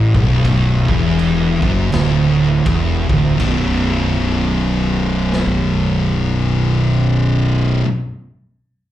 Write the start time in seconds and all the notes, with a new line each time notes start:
Already playing: A1 A2
0.15 B0 B1, kick
0.45 kick, crash
0.88 E1 E2, kick
1.19 crash
1.62 F#1 F#2, kick
1.92 D1 D2, snare, crash
2.66 E1 E2, kick, crash
3.08 D1 D2, kick
3.37 B0 B1 F#2, kick, crash
3.42 B2
5.33 snare
5.46 kick